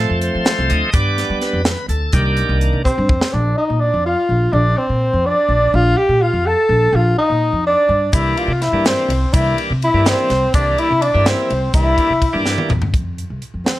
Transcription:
Already playing: tonewheel organ F3 A3 C4 A4
0.10 upright bass F2
0.21 tonewheel organ C5, closed hi-hat
0.35 upright bass F3
0.45 snare, closed hi-hat, shaker
0.59 upright bass C2
0.70 upright bass D2, tonewheel organ D#5, closed hi-hat, shaker
0.93 upright bass G2, tonewheel organ G3 B3 D4 D5, kick, closed hi-hat, shaker
1.18 snare, closed hi-hat
1.30 upright bass G3
1.41 tonewheel organ B4, snare, closed hi-hat
1.53 upright bass F2
1.65 snare, closed hi-hat, shaker
1.88 upright bass D2, tonewheel organ A4, closed hi-hat, shaker
2.13 upright bass C2, tonewheel organ D#3 A#3 D4 G4, kick, closed hi-hat, shaker
2.37 closed hi-hat
2.49 upright bass C2
2.61 closed hi-hat
2.73 upright bass C3
2.84 tenor saxophone C4, flugelhorn C5, kick, shaker
2.98 upright bass G2
3.09 upright bass F2, kick
3.21 snare
3.32 upright bass A#1, tenor saxophone D4, flugelhorn D5
3.56 tenor saxophone D#4, flugelhorn D#5
3.70 upright bass A#2
3.80 tenor saxophone D4, flugelhorn D5
3.94 upright bass F2
4.05 tenor saxophone F4, flugelhorn F5
4.29 upright bass A#1
4.52 upright bass A#1, tenor saxophone D4, flugelhorn D5
4.77 tenor saxophone C4, flugelhorn C5
4.89 upright bass A#2
5.13 upright bass F2
5.26 tenor saxophone D4, flugelhorn D5
5.49 upright bass A#1
5.74 upright bass A#1, tenor saxophone F4, flugelhorn F5
5.97 tenor saxophone G4, flugelhorn G5
6.09 upright bass A#2
6.21 tenor saxophone F4, flugelhorn F5
6.33 upright bass F2
6.46 tenor saxophone A4, flugelhorn A5
6.69 upright bass A#1
6.92 upright bass A#1, tenor saxophone F4, flugelhorn F5
7.18 tenor saxophone D#4, flugelhorn D#5
7.30 upright bass A#2
7.52 upright bass F2
7.67 tenor saxophone D4, flugelhorn D5
7.89 upright bass G2
8.13 upright bass C2, tonewheel organ E3 G3 A#3 D4, tenor saxophone E4, flugelhorn E5, kick, ride, shaker
8.37 tenor saxophone F4, flugelhorn F5, ride
8.48 upright bass C3
8.61 tenor saxophone E4, flugelhorn E5, snare, ride
8.72 upright bass G2, tonewheel organ E3 G3 A#3 D4
8.86 tenor saxophone C4, flugelhorn C5, snare, ride, shaker
9.08 upright bass C2, ride
9.33 upright bass C2, tonewheel organ E3 G3 A#3 D4, tenor saxophone E4, flugelhorn E5, kick, ride, shaker
9.58 ride
9.70 upright bass C3
9.82 tenor saxophone E4, ride
9.86 flugelhorn E5
9.94 upright bass G2, tonewheel organ E3 G3 A#3 D4
10.06 tenor saxophone C4, flugelhorn C5, snare, ride, shaker
10.30 upright bass C2, snare, ride
10.54 upright bass C2, tonewheel organ E3 G3 A#3 D4, tenor saxophone D4, flugelhorn D5, kick, ride, shaker
10.78 tenor saxophone E4, flugelhorn E5, ride
10.90 upright bass C3
11.02 tenor saxophone D4, flugelhorn D5, ride
11.14 upright bass G2, tonewheel organ E3 G3 A#3 E4
11.26 tenor saxophone C4, flugelhorn C5, snare, ride, shaker
11.50 upright bass C2, ride
11.74 upright bass C2, tonewheel organ E3 G3 A#3 D4, tenor saxophone E4, flugelhorn E5, kick, ride, shaker
11.98 kick, ride
12.10 upright bass C3
12.22 kick, ride
12.33 upright bass G2, tonewheel organ E3 G3 A#3 D4
12.46 snare, shaker
12.58 high tom
12.69 upright bass E2, mid tom, shaker
12.82 floor tom
12.93 upright bass F2, kick, closed hi-hat
13.18 closed hi-hat
13.30 upright bass C2
13.42 closed hi-hat
13.54 upright bass F2
13.65 tenor saxophone C4, snare, closed hi-hat

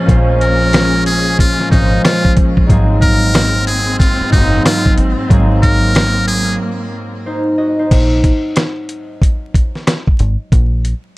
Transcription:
Already playing: string section G#3 A#3 C#4
0.06 fingered electric bass A#1, harp A#2 F3 G#3 C4, kick, closed hi-hat
0.11 harp C5
0.16 harp C#4
0.41 muted trumpet A#4, closed hi-hat
0.73 cross-stick, snare, closed hi-hat
1.06 muted trumpet G#4, closed hi-hat
1.39 muted trumpet F4, kick, closed hi-hat
1.60 snare
1.69 fingered electric bass G#1, harp A#2 F3 G#3 C#4, muted trumpet D#4, kick
1.73 harp C5, closed hi-hat
2.04 muted trumpet F4, cross-stick, snare, closed hi-hat
2.25 kick
2.37 kick, closed hi-hat
2.57 kick
2.67 fingered electric bass G#1, harp G#2 F#3 A#3 C4, string section F#3 C4, kick, closed hi-hat
2.72 harp G#4
3.02 muted trumpet A#4, kick, closed hi-hat
3.34 cross-stick, snare, closed hi-hat
3.67 muted trumpet G#4, closed hi-hat
4.00 muted trumpet F4, kick, closed hi-hat
4.21 muted fingered electric bass stroke
4.30 fingered electric bass F#1, harp G#2 F#3 A#3 C4, muted trumpet D#4, kick, closed hi-hat
4.35 harp F#4
4.41 harp G#4
4.54 snare
4.65 muted trumpet F4, cross-stick, snare, closed hi-hat
4.86 kick
4.98 fingered electric bass G#1, closed hi-hat
5.28 fingered electric bass G#1, harp G#2 F#3 A#3 C4, string section A#3, kick, closed hi-hat
5.33 harp G#4
5.63 muted trumpet A#4, kick, closed hi-hat
5.95 cross-stick, snare, closed hi-hat
6.28 muted trumpet G#4, closed hi-hat
7.26 harp D#4 C5
7.58 harp F#4 D#5
7.79 harp D#4 C5
7.91 fingered electric bass A#1, kick, closed hi-hat, crash
8.24 kick, closed hi-hat
8.56 cross-stick, snare, closed hi-hat
8.89 closed hi-hat
9.22 kick, closed hi-hat
9.54 kick, closed hi-hat
9.75 snare
9.87 cross-stick, snare, closed hi-hat
10.07 kick
10.19 fingered electric bass G#1, closed hi-hat
10.52 fingered electric bass A#1, kick, closed hi-hat
10.85 closed hi-hat

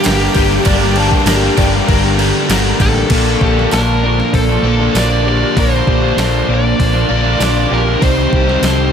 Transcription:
Already playing: overdriven electric guitar G2 D3 G3 A#3 D4, lead electric guitar G4, ambient pad G4 F5 G5, clean electric guitar A#4 D5
0.04 fingered electric bass G1, overdriven electric guitar G2 D3 G3 A#3 D4 A#4, clean electric guitar A#4, snare, tambourine, crash
0.34 fingered electric bass G1, overdriven electric guitar G2 D3 G3 A#3 D4 A#4, clean electric guitar G4, kick, tambourine, crash
0.64 fingered electric bass G1, overdriven electric guitar G2 D3 G3 A#3 D4 A#4, clean electric guitar D5, kick, tambourine, crash
0.96 overdriven electric guitar G2 D3 G3 A#3 D4 A#4, clean electric guitar A5, tambourine, crash
1.12 kick
1.26 fingered electric bass G1, overdriven electric guitar G2 D3 G3 A#3 D4 A#4, clean electric guitar A#4, snare, tambourine, crash
1.57 fingered electric bass G1, overdriven electric guitar G2 D3 G3 A#3 D4 A#4, clean electric guitar D5, kick, snare, tambourine, crash
1.87 fingered electric bass G1, overdriven electric guitar G2 D3 G3 A#3 D4 A#4, clean electric guitar A#4, kick, tambourine, crash
2.18 overdriven electric guitar G2 D3 G3 A#3 D4 A#4, clean electric guitar G4, tambourine, crash
2.48 fingered electric bass G1, overdriven electric guitar G2 D3 G3 A#3 D4 A#4, clean electric guitar A#4, snare, tambourine, crash
2.79 fingered electric bass A1, overdriven electric guitar G2 D3 G3 A#3 D4 A#4, clean electric guitar G4, lead electric guitar A4, kick, tambourine, crash
3.10 fingered electric bass A#1, overdriven electric guitar A#2 D3 F3 A#3 D4 F4, clean electric guitar A#3, kick, open hi-hat, crash
3.40 fingered electric bass A#1, overdriven electric guitar D3 A#3 D4 F4, clean electric guitar G4, kick
3.56 overdriven electric guitar F3 A#3 D4, snare
3.71 fingered electric bass A#1, overdriven electric guitar A#2 D3 F3 A#3 D4 F4, lead electric guitar A#4, clean electric guitar A5, snare, open hi-hat, tambourine
4.03 overdriven electric guitar D3 F3 A#3 D4 F4, clean electric guitar D5
4.19 overdriven electric guitar A#3 D4 F4, muted overdriven electric guitar stroke, snare
4.33 fingered electric bass A#1, lead electric guitar A4, clean electric guitar C5, kick, open hi-hat
4.48 overdriven electric guitar F3 A#3 D4 F4
4.63 fingered electric bass A#1, overdriven electric guitar A#2 D3 F3 A#3 D4 F4, clean electric guitar A#3, muted overdriven electric guitar stroke
4.80 overdriven electric guitar F3 A#3 D4 F4
4.94 fingered electric bass A#1, overdriven electric guitar A#2 D3 F3 A#3 D4 F4, clean electric guitar D5, snare, open hi-hat, tambourine
4.98 lead electric guitar D5
5.25 overdriven electric guitar D3 F3 A#3 D4 F4, clean electric guitar G4, lead electric guitar D5
5.41 overdriven electric guitar F3 A#3 D4 F4
5.56 fingered electric bass A#1, overdriven electric guitar A#2 D3 F3 A#3 D4 F4, clean electric guitar A#4, lead electric guitar C5, kick, open hi-hat
5.87 fingered electric bass A#1, overdriven electric guitar D3 A#3 D4 F4, clean electric guitar G4, kick
6.02 overdriven electric guitar F3 A#3 D4
6.16 fingered electric bass A#1, overdriven electric guitar A#2 D3 F3 A#3 D4 F4, clean electric guitar A4, snare, open hi-hat, tambourine
6.48 fingered electric bass A#1, overdriven electric guitar D3 F3 A#3 D4 F4, clean electric guitar D5
6.54 lead electric guitar D5
6.63 overdriven electric guitar A#3 D4 F4, muted overdriven electric guitar stroke
6.79 fingered electric bass A#1, clean electric guitar C5, kick, open hi-hat
6.93 overdriven electric guitar F3 A#3 D4 F4
7.08 fingered electric bass A#1, overdriven electric guitar D3 F3 A#3 D4 F4, clean electric guitar A#4, muted overdriven electric guitar stroke
7.12 overdriven electric guitar A#2
7.24 overdriven electric guitar F3 A#3 D4 F4
7.38 fingered electric bass A#1, overdriven electric guitar A#2 D3 F3 A#3 D4 F4, clean electric guitar D5, open hi-hat, tambourine
7.42 snare
7.70 fingered electric bass A#1, overdriven electric guitar D3 F3 A#3 D4 F4, clean electric guitar G4, lead electric guitar A#4
7.85 overdriven electric guitar F3 A#3 D4 F4
8.01 fingered electric bass C2, overdriven electric guitar C3 D#3 G3 C4 D#4 G4, clean electric guitar C5, lead electric guitar C5, kick, open hi-hat
8.33 fingered electric bass C2, overdriven electric guitar D#3 G3 C4 G4, clean electric guitar G4, kick
8.45 overdriven electric guitar G3 C4 D#4, snare
8.62 fingered electric bass C2, overdriven electric guitar C3 D#3 G3 C4 D#4, clean electric guitar A4, snare, open hi-hat, tambourine
8.66 overdriven electric guitar G4

